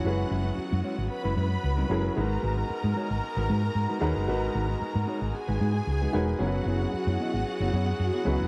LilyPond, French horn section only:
\new Staff \with { instrumentName = "French horn section" } { \time 4/4 \key fis \mixolydian \tempo 4 = 113 << { <b fis'>1~ | <b fis'>1~ | <b fis'>1 | <b gis'>1 | } \\ { <fis e'>1 | <gis dis'>1~ | <gis dis'>1 | <fis e'>1 | } >> }